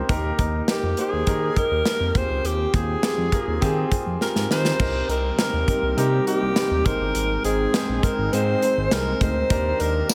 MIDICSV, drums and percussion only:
0, 0, Header, 1, 2, 480
1, 0, Start_track
1, 0, Tempo, 588235
1, 75, Time_signature, 4, 2, 24, 8
1, 8274, End_track
2, 0, Start_track
2, 0, Title_t, "Drums"
2, 75, Note_on_c, 9, 42, 85
2, 76, Note_on_c, 9, 36, 108
2, 157, Note_off_c, 9, 36, 0
2, 157, Note_off_c, 9, 42, 0
2, 315, Note_on_c, 9, 42, 72
2, 317, Note_on_c, 9, 36, 89
2, 397, Note_off_c, 9, 42, 0
2, 398, Note_off_c, 9, 36, 0
2, 555, Note_on_c, 9, 38, 114
2, 555, Note_on_c, 9, 42, 77
2, 636, Note_off_c, 9, 38, 0
2, 637, Note_off_c, 9, 42, 0
2, 793, Note_on_c, 9, 42, 73
2, 874, Note_off_c, 9, 42, 0
2, 1034, Note_on_c, 9, 42, 82
2, 1037, Note_on_c, 9, 36, 82
2, 1115, Note_off_c, 9, 42, 0
2, 1119, Note_off_c, 9, 36, 0
2, 1276, Note_on_c, 9, 42, 62
2, 1277, Note_on_c, 9, 36, 74
2, 1357, Note_off_c, 9, 42, 0
2, 1359, Note_off_c, 9, 36, 0
2, 1514, Note_on_c, 9, 38, 93
2, 1517, Note_on_c, 9, 42, 82
2, 1595, Note_off_c, 9, 38, 0
2, 1598, Note_off_c, 9, 42, 0
2, 1755, Note_on_c, 9, 36, 100
2, 1757, Note_on_c, 9, 42, 58
2, 1836, Note_off_c, 9, 36, 0
2, 1839, Note_off_c, 9, 42, 0
2, 1997, Note_on_c, 9, 42, 88
2, 2079, Note_off_c, 9, 42, 0
2, 2233, Note_on_c, 9, 42, 74
2, 2234, Note_on_c, 9, 36, 89
2, 2315, Note_off_c, 9, 36, 0
2, 2315, Note_off_c, 9, 42, 0
2, 2473, Note_on_c, 9, 38, 111
2, 2474, Note_on_c, 9, 42, 75
2, 2555, Note_off_c, 9, 38, 0
2, 2555, Note_off_c, 9, 42, 0
2, 2711, Note_on_c, 9, 36, 76
2, 2712, Note_on_c, 9, 42, 71
2, 2793, Note_off_c, 9, 36, 0
2, 2793, Note_off_c, 9, 42, 0
2, 2955, Note_on_c, 9, 36, 80
2, 2955, Note_on_c, 9, 42, 82
2, 3036, Note_off_c, 9, 42, 0
2, 3037, Note_off_c, 9, 36, 0
2, 3195, Note_on_c, 9, 36, 76
2, 3195, Note_on_c, 9, 42, 66
2, 3276, Note_off_c, 9, 42, 0
2, 3277, Note_off_c, 9, 36, 0
2, 3436, Note_on_c, 9, 38, 51
2, 3518, Note_off_c, 9, 38, 0
2, 3557, Note_on_c, 9, 38, 52
2, 3638, Note_off_c, 9, 38, 0
2, 3678, Note_on_c, 9, 38, 79
2, 3760, Note_off_c, 9, 38, 0
2, 3794, Note_on_c, 9, 38, 75
2, 3876, Note_off_c, 9, 38, 0
2, 3915, Note_on_c, 9, 36, 110
2, 3915, Note_on_c, 9, 49, 82
2, 3996, Note_off_c, 9, 36, 0
2, 3996, Note_off_c, 9, 49, 0
2, 4157, Note_on_c, 9, 42, 74
2, 4239, Note_off_c, 9, 42, 0
2, 4395, Note_on_c, 9, 38, 110
2, 4395, Note_on_c, 9, 42, 79
2, 4476, Note_off_c, 9, 38, 0
2, 4477, Note_off_c, 9, 42, 0
2, 4634, Note_on_c, 9, 36, 73
2, 4637, Note_on_c, 9, 42, 77
2, 4716, Note_off_c, 9, 36, 0
2, 4718, Note_off_c, 9, 42, 0
2, 4878, Note_on_c, 9, 42, 88
2, 4959, Note_off_c, 9, 42, 0
2, 5118, Note_on_c, 9, 42, 65
2, 5200, Note_off_c, 9, 42, 0
2, 5353, Note_on_c, 9, 38, 97
2, 5356, Note_on_c, 9, 42, 81
2, 5434, Note_off_c, 9, 38, 0
2, 5438, Note_off_c, 9, 42, 0
2, 5595, Note_on_c, 9, 36, 97
2, 5595, Note_on_c, 9, 42, 60
2, 5677, Note_off_c, 9, 36, 0
2, 5677, Note_off_c, 9, 42, 0
2, 5834, Note_on_c, 9, 42, 91
2, 5915, Note_off_c, 9, 42, 0
2, 6075, Note_on_c, 9, 42, 80
2, 6156, Note_off_c, 9, 42, 0
2, 6316, Note_on_c, 9, 38, 110
2, 6316, Note_on_c, 9, 42, 78
2, 6397, Note_off_c, 9, 38, 0
2, 6397, Note_off_c, 9, 42, 0
2, 6555, Note_on_c, 9, 36, 76
2, 6556, Note_on_c, 9, 42, 73
2, 6636, Note_off_c, 9, 36, 0
2, 6637, Note_off_c, 9, 42, 0
2, 6798, Note_on_c, 9, 42, 90
2, 6879, Note_off_c, 9, 42, 0
2, 7038, Note_on_c, 9, 42, 68
2, 7119, Note_off_c, 9, 42, 0
2, 7274, Note_on_c, 9, 38, 100
2, 7277, Note_on_c, 9, 42, 86
2, 7356, Note_off_c, 9, 38, 0
2, 7359, Note_off_c, 9, 42, 0
2, 7515, Note_on_c, 9, 36, 89
2, 7516, Note_on_c, 9, 42, 64
2, 7597, Note_off_c, 9, 36, 0
2, 7598, Note_off_c, 9, 42, 0
2, 7754, Note_on_c, 9, 42, 89
2, 7755, Note_on_c, 9, 36, 113
2, 7835, Note_off_c, 9, 42, 0
2, 7836, Note_off_c, 9, 36, 0
2, 7996, Note_on_c, 9, 42, 73
2, 8077, Note_off_c, 9, 42, 0
2, 8237, Note_on_c, 9, 38, 115
2, 8237, Note_on_c, 9, 42, 84
2, 8237, Note_on_c, 9, 54, 68
2, 8274, Note_off_c, 9, 38, 0
2, 8274, Note_off_c, 9, 42, 0
2, 8274, Note_off_c, 9, 54, 0
2, 8274, End_track
0, 0, End_of_file